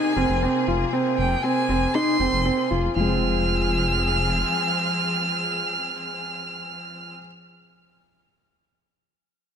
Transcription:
Already playing: string section C3 A#3 G#4, felt piano D#4, violin G#5
0.16 detuned saw bass F1, felt piano C4
0.29 detuned saw bass F1
0.42 felt piano C4
0.68 detuned saw bass F1, felt piano F4
0.93 felt piano C4
1.17 detuned saw bass F1, violin G5
1.43 felt piano C4, violin G#5
1.69 detuned saw bass F1, felt piano C4
1.94 felt piano D#4, violin C6
2.20 detuned saw bass F1, felt piano C4
2.33 detuned saw bass F1
2.45 felt piano C4
2.70 detuned saw bass F1, felt piano F4
2.96 detuned saw bass F1, felt piano F3, string section F3 C4 G#4, violin F6
3.00 felt piano G#3
3.04 felt piano C4
3.08 felt piano F4

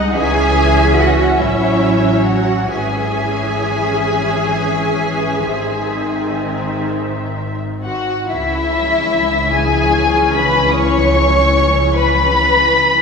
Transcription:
Already playing: double bass section C2, viola section G#3 D#4, cello section D#4, violin section D#5 F#5
0.14 double bass section C#2, viola section E3 C#4, cello section G#4, violin section E5 G#5
0.99 cello section F#4, violin section F#5
1.38 double bass section A1, viola section F#3, cello section E4, violin section C#5 E5
2.25 cello section F#4, violin section F#5
2.71 double bass section G#1, viola section E3 C#4, cello section G#4, violin section E5 G#5
5.47 double bass section G#1, viola section D#3 C4
7.83 violin section F#4 F#5
8.29 cello section C#2, double bass section C#2, viola section E3 C#4, violin section E4 E5
9.55 violin section G#4 G#5
10.36 violin section B4 B5
10.70 violin section D#6
10.76 violin section C#5 C#6
11.95 violin section B4 B5

